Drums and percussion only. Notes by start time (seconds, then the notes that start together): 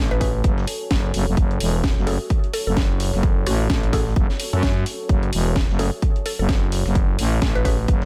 0.11 closed hi-hat
0.21 kick, closed hi-hat, open hi-hat
0.44 kick, closed hi-hat
0.58 snare
0.67 closed hi-hat, open hi-hat
0.91 kick, snare, closed hi-hat
1.14 closed hi-hat, open hi-hat
1.37 kick, closed hi-hat
1.51 closed hi-hat
1.60 closed hi-hat, open hi-hat
1.84 kick, snare, closed hi-hat
1.97 snare
2.07 closed hi-hat, open hi-hat
2.30 kick, closed hi-hat
2.44 closed hi-hat
2.54 open hi-hat
2.77 kick, snare, closed hi-hat
3.00 closed hi-hat, open hi-hat
3.14 snare
3.23 kick, closed hi-hat
3.47 cross-stick, snare, closed hi-hat, open hi-hat
3.70 kick, snare, closed hi-hat
3.83 closed hi-hat
3.93 kick, snare, closed hi-hat, open hi-hat
4.07 snare
4.16 kick, closed hi-hat
4.30 snare
4.40 closed hi-hat, open hi-hat
4.53 closed hi-hat
4.63 kick, snare, closed hi-hat
4.86 closed hi-hat, open hi-hat
5.09 kick, closed hi-hat
5.23 closed hi-hat
5.33 closed hi-hat, open hi-hat
5.56 kick, snare, closed hi-hat
5.69 snare
5.79 closed hi-hat, open hi-hat
6.02 kick, closed hi-hat
6.16 closed hi-hat
6.26 open hi-hat
6.49 kick, snare, closed hi-hat
6.72 closed hi-hat, open hi-hat
6.86 snare
6.95 kick, closed hi-hat
7.19 snare, closed hi-hat, open hi-hat
7.42 kick, snare, closed hi-hat
7.55 closed hi-hat
7.65 kick, closed hi-hat, open hi-hat
7.88 kick, closed hi-hat
8.02 snare